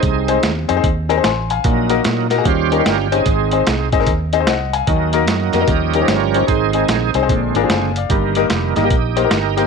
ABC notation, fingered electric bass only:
X:1
M:4/4
L:1/8
Q:"Swing" 1/4=149
K:Ebdor
V:1 name="Fingered electric bass" clef=bass
C,,2 E,, F,, E,,2 =A,,,2 | B,,,2 B,,2 E,,2 =G,,,2 | A,,,2 C,, A,,, E,,2 C,,2 | E,,2 G,, F,, E,,2 =G,,,2 |
A,,,2 B,,, C,, B,,, A,,, G,,,2 | =G,,,2 F,,, G,,, B,,,2 G,,,2 |]